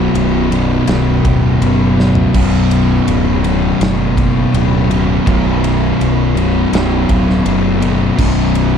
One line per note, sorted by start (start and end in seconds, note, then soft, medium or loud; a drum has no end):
0.00 0.52 B1 medium
0.00 0.49 F#2 loud
0.00 0.50 B2 loud
0.14 0.78 B0 medium
0.14 ride loud
0.50 1.59 B1 medium
0.50 1.59 F#2 medium
0.50 1.62 B2 medium
0.50 ride medium
0.87 1.20 B0 loud
0.87 2.33 B1 medium
0.87 2.32 F#2 medium
0.87 2.36 B2 medium
0.87 snare loud
0.87 ride loud
1.24 1.57 D1 loud
1.24 kick medium
1.24 ride medium
1.60 2.25 F#1 loud
1.60 2.33 B1 medium
1.60 2.32 F#2 medium
1.60 2.35 B2 medium
1.60 ride loud
1.97 2.34 B1 medium
1.97 2.32 F#2 medium
1.97 2.36 B2 loud
1.97 snare medium
2.15 floor tom loud
2.33 2.98 B0 medium
2.33 3.45 B1 medium
2.33 3.42 F#2 loud
2.33 3.43 B2 loud
2.33 kick loud
2.33 crash loud
2.71 ride medium
3.07 3.71 D1 medium
3.07 ride loud
3.43 4.52 B1 medium
3.43 4.51 F#2 medium
3.43 4.54 B2 medium
3.43 ride medium
3.80 4.44 F#1 loud
3.80 5.26 B1 medium
3.80 5.25 F#2 medium
3.80 5.28 B2 medium
3.80 snare loud
3.80 ride loud
4.17 kick medium
4.17 ride medium
4.52 5.18 D1 medium
4.52 5.25 B1 medium
4.52 5.24 F#2 medium
4.52 5.27 B2 loud
4.52 ride loud
4.90 5.25 B1 medium
4.90 5.25 F#2 medium
4.90 5.28 B2 medium
4.90 ride medium
5.25 5.91 B0 loud
5.25 6.37 B1 loud
5.25 6.34 F#2 loud
5.25 6.34 B2 loud
5.25 kick loud
5.25 ride loud
5.64 ride medium
6.00 6.64 B0 medium
6.00 ride loud
6.35 7.44 B1 medium
6.35 7.43 F#2 medium
6.35 7.46 B2 loud
6.35 ride medium
6.72 7.04 B0 medium
6.72 8.19 B1 medium
6.72 8.17 F#2 medium
6.72 8.21 B2 medium
6.72 snare loud
6.72 ride loud
7.09 7.41 D1 loud
7.09 kick medium
7.09 ride medium
7.30 snare soft
7.44 8.10 F#1 loud
7.44 8.16 B1 medium
7.44 8.16 F#2 medium
7.44 8.19 B2 medium
7.44 ride loud
7.81 8.16 B1 medium
7.81 8.17 F#2 medium
7.81 8.19 B2 medium
7.81 ride medium
8.17 8.78 B0 loud
8.17 8.78 B1 medium
8.17 8.78 F#2 loud
8.17 8.78 B2 loud
8.17 kick loud
8.17 crash loud
8.55 ride medium